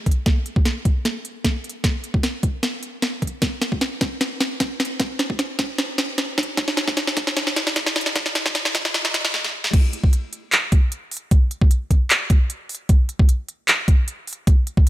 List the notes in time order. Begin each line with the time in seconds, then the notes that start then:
0.06 kick, closed hi-hat
0.11 closed hi-hat
0.26 kick, snare, closed hi-hat
0.46 closed hi-hat
0.56 kick
0.65 snare, closed hi-hat
0.85 kick, closed hi-hat
1.05 snare, closed hi-hat
1.25 closed hi-hat
1.45 kick, snare, closed hi-hat
1.64 closed hi-hat
1.69 closed hi-hat
1.84 kick, snare, closed hi-hat
2.04 closed hi-hat
2.14 kick
2.23 snare, closed hi-hat
2.43 kick, closed hi-hat
2.63 snare, closed hi-hat
2.83 closed hi-hat
3.02 snare, closed hi-hat
3.22 kick, closed hi-hat
3.27 closed hi-hat
3.42 kick, snare, closed hi-hat
3.62 snare, closed hi-hat
3.72 kick
3.81 snare, closed hi-hat
4.01 kick, snare, closed hi-hat
4.21 snare, closed hi-hat
4.41 snare, closed hi-hat
4.60 kick, snare, closed hi-hat
4.80 snare, closed hi-hat
4.85 closed hi-hat
5.00 kick, snare, closed hi-hat
5.19 snare, closed hi-hat
5.30 kick
5.39 snare, closed hi-hat
5.59 kick, snare, closed hi-hat
5.78 snare, closed hi-hat
5.98 snare, closed hi-hat
6.18 snare, closed hi-hat
6.38 kick, snare, closed hi-hat
6.43 closed hi-hat
6.57 kick, snare, closed hi-hat
6.68 snare
6.77 snare, closed hi-hat
6.88 kick, snare
6.97 snare, closed hi-hat
7.07 snare
7.17 kick, snare, closed hi-hat
7.27 snare
7.37 snare, closed hi-hat
7.47 snare
7.56 snare, closed hi-hat
7.67 snare
7.76 kick, snare, closed hi-hat
7.86 snare
7.96 snare, closed hi-hat
8.01 closed hi-hat
8.06 snare
8.15 kick, snare, closed hi-hat
8.26 snare
8.35 snare, closed hi-hat
8.46 kick, snare
8.55 snare, closed hi-hat
8.65 snare
8.75 kick, snare, closed hi-hat
8.85 snare
8.94 snare, closed hi-hat
9.05 snare
9.14 snare, closed hi-hat
9.25 snare
9.34 snare
9.44 snare
9.64 snare
9.73 kick, closed hi-hat, crash
9.93 closed hi-hat
10.04 kick
10.13 closed hi-hat
10.33 closed hi-hat
10.52 clap, closed hi-hat
10.72 kick, closed hi-hat
10.92 closed hi-hat
11.11 open hi-hat
11.17 closed hi-hat
11.31 kick, closed hi-hat
11.51 closed hi-hat
11.62 kick
11.71 closed hi-hat
11.91 kick, closed hi-hat
12.10 clap, closed hi-hat
12.30 kick, closed hi-hat
12.50 closed hi-hat
12.69 open hi-hat
12.75 closed hi-hat
12.89 kick, closed hi-hat
13.09 closed hi-hat
13.19 kick
13.29 closed hi-hat
13.48 closed hi-hat
13.68 clap, closed hi-hat
13.88 kick, closed hi-hat
14.08 closed hi-hat
14.27 open hi-hat
14.33 closed hi-hat
14.47 kick, closed hi-hat
14.67 closed hi-hat
14.77 kick